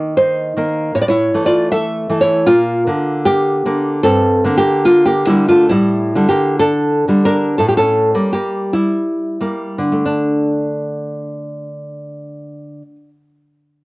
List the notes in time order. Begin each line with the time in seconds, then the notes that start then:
Already playing: D#3 A#3 D#4 A#4
0.17 D#4 C5
0.57 D#3 A#3
0.95 A2 C#5
1.02 D5
1.08 E4 C#5
1.34 E3 A3
1.46 F4 D5
1.72 A4 E5
2.10 E3 A3
2.21 E4 C#5
2.47 A#2 A#3 F4
2.87 D3 A#3
3.25 A#3 G4
3.66 D3 A#3
4.03 G2 C4 A4
4.44 D3 A#3
4.58 A#3 G4
4.85 A#3 F4
5.06 A#3 G4
5.27 D3 G3 A#3 E4
5.49 A3 F4
5.69 A2 G3 E4
6.15 D3 G3
6.29 A#3 G4
6.59 D4 A4
7.08 D3 G3
7.25 D4 A#4
7.58 A2 A4
7.69 G4
7.77 C#4 A4
8.14 G3 A#3
8.33 A#3 G4
8.73 G3 E4
9.41 G3 A#3
9.78 D3
9.92 A3
10.06 D4